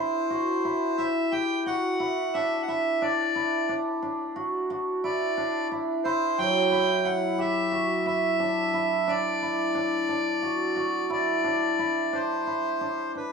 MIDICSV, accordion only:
0, 0, Header, 1, 2, 480
1, 0, Start_track
1, 0, Tempo, 674916
1, 2150, Time_signature, 9, 3, 24, 8
1, 7178, Tempo, 682594
1, 9449, End_track
2, 0, Start_track
2, 0, Title_t, "Accordion"
2, 0, Program_c, 0, 21
2, 0, Note_on_c, 0, 72, 71
2, 694, Note_on_c, 0, 76, 83
2, 731, Note_off_c, 0, 72, 0
2, 936, Note_on_c, 0, 79, 90
2, 948, Note_off_c, 0, 76, 0
2, 1165, Note_off_c, 0, 79, 0
2, 1186, Note_on_c, 0, 78, 99
2, 1663, Note_on_c, 0, 76, 86
2, 1683, Note_off_c, 0, 78, 0
2, 1863, Note_off_c, 0, 76, 0
2, 1865, Note_on_c, 0, 78, 58
2, 1903, Note_on_c, 0, 76, 79
2, 1912, Note_off_c, 0, 78, 0
2, 2147, Note_on_c, 0, 74, 84
2, 2154, Note_off_c, 0, 76, 0
2, 2660, Note_off_c, 0, 74, 0
2, 3586, Note_on_c, 0, 74, 99
2, 4039, Note_off_c, 0, 74, 0
2, 4298, Note_on_c, 0, 72, 95
2, 4540, Note_on_c, 0, 79, 106
2, 4548, Note_off_c, 0, 72, 0
2, 5012, Note_on_c, 0, 78, 86
2, 5032, Note_off_c, 0, 79, 0
2, 5262, Note_off_c, 0, 78, 0
2, 5266, Note_on_c, 0, 76, 94
2, 5732, Note_off_c, 0, 76, 0
2, 5743, Note_on_c, 0, 76, 94
2, 6462, Note_on_c, 0, 74, 99
2, 6481, Note_off_c, 0, 76, 0
2, 7894, Note_off_c, 0, 74, 0
2, 7904, Note_on_c, 0, 74, 83
2, 8619, Note_on_c, 0, 72, 77
2, 8646, Note_off_c, 0, 74, 0
2, 9308, Note_off_c, 0, 72, 0
2, 9343, Note_on_c, 0, 71, 67
2, 9449, Note_off_c, 0, 71, 0
2, 9449, End_track
0, 0, End_of_file